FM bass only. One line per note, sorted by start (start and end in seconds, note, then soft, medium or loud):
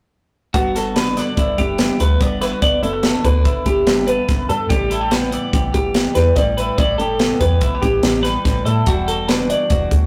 0.54 1.21 G1 medium
1.37 1.54 G1 loud
1.59 1.92 F#1 medium
2.00 2.17 D2 medium
2.21 2.54 G1 medium
2.62 2.79 G1 medium
2.83 3.17 F#1 medium
3.25 3.47 D2 medium
3.45 3.62 G1 medium
3.66 3.83 G1 loud
3.87 4.21 G1 medium
4.29 4.46 G1 medium
4.50 4.67 G2 medium
4.70 5.37 A1 medium
5.53 5.70 A1 medium
5.75 6.08 G1 medium
6.16 6.33 E2 medium
6.36 6.70 A1 medium
6.78 6.95 A1 medium
6.99 7.33 G1 medium
7.41 7.63 E2 medium
7.62 7.79 A1 medium
7.83 8.00 A1 loud
8.03 8.37 A1 loud
8.45 8.62 A1 medium
8.65 8.83 A2 medium
8.87 9.54 E1 medium
9.71 9.87 E1 medium
9.92 10.06 D2 medium